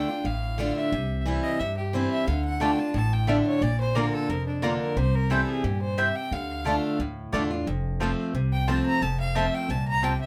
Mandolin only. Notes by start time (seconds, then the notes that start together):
2.60 A3 F4 D5 A5
3.28 A3 F4 D5 A5
3.95 A#3 F4 D5 A#5
4.62 A#3 F4 D5 A#5
5.30 C4 E4 C5 G5
5.97 C4 E4 C5 G5
6.65 A3 F4 D5 A5
7.32 A3 F4 D5 A5
8.00 C4 F4 C5 A5
8.67 C4 F4 C5 A5
9.35 C4 F4 C5 A5
10.02 C4 F4 C5 A5